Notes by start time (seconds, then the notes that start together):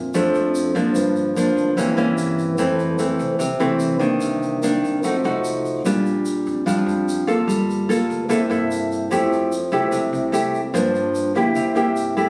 Already playing: F2 A#2
0.14 F2 F3 A3 D4, shaker
0.34 F2, shaker
0.55 shaker
0.75 F3 A#3 D4, shaker
0.95 G1 G2, shaker
1.16 shaker
1.36 F3 A#3 D4, shaker
1.57 D2, shaker
1.77 C2 C3 E3 A#3 C#4, shaker
1.97 G2 E3 A#3 C#4, shaker
2.18 shaker
2.38 shaker
2.58 F2 E3 A3 C4, shaker
2.79 shaker
2.99 E3 A3 C4, shaker
3.19 C2, shaker
3.39 C2 C3, shaker
3.60 C2 E3 A3 C4, shaker
3.80 shaker
3.99 D#3 A#3 D4, shaker
4.21 C2 C3, shaker
4.42 shaker
4.63 D#3 A#3 D4, shaker
4.84 D#2, shaker
5.03 F2 F3 A3 D#4 F#4, shaker
5.24 C2 A3 D#4 F#4, shaker
5.44 shaker
5.65 shaker
5.85 A#1 A#2 G3 D4 F4, shaker
6.06 shaker
6.26 shaker
6.46 F2, shaker
6.66 F2 F3 G3 D4 F4, shaker
6.86 F2, shaker
7.09 shaker
7.27 A#3 F4 A4, shaker
7.47 G1 G3, shaker
7.70 shaker
7.89 A#3 F4 A4, shaker
8.10 D2, shaker
8.29 C2 C3 A#3 E4 A4, shaker
8.50 G2 A#3 E4 A4, shaker
8.71 shaker
8.92 shaker
9.11 F2 F3 A3 E4 G4, shaker
9.32 shaker
9.52 shaker
9.71 C2 A3 E4 G4, shaker
9.92 C2 C3, shaker
10.13 C2, shaker
10.32 A3 E4 G4, shaker
10.54 shaker
10.74 G2 F3 A#3 D4, shaker
10.95 shaker
11.15 shaker
11.34 D2 A#3 E4 G4, shaker
11.55 C2 C3, shaker
11.75 G2 A#3 E4 G4, shaker
11.96 shaker
12.17 A3 E4 G4, shaker